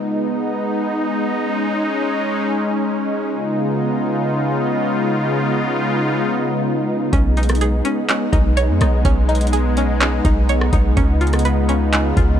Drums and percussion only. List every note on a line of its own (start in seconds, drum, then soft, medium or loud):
7.13 kick loud
7.13 closed hi-hat medium
7.37 closed hi-hat soft
7.43 closed hi-hat medium
7.49 cross-stick loud
7.49 closed hi-hat medium
7.55 closed hi-hat medium
7.61 closed hi-hat medium
7.85 closed hi-hat medium
8.09 clap loud
8.09 closed hi-hat medium
8.33 kick loud
8.33 closed hi-hat medium
8.57 closed hi-hat medium
8.81 cross-stick loud
8.81 closed hi-hat medium
9.05 kick loud
9.05 closed hi-hat medium
9.29 closed hi-hat soft
9.35 closed hi-hat medium
9.41 closed hi-hat medium
9.47 closed hi-hat medium
9.53 closed hi-hat medium
9.77 closed hi-hat medium
10.01 clap loud
10.01 closed hi-hat medium
10.25 kick loud
10.25 closed hi-hat medium
10.49 closed hi-hat medium
10.61 cross-stick loud
10.73 kick loud
10.73 closed hi-hat medium
10.97 kick loud
10.97 closed hi-hat medium
11.21 closed hi-hat soft
11.27 closed hi-hat medium
11.33 cross-stick loud
11.33 closed hi-hat medium
11.39 closed hi-hat medium
11.45 closed hi-hat medium
11.69 closed hi-hat medium
11.93 clap loud
11.93 closed hi-hat medium
12.17 kick loud
12.17 closed hi-hat medium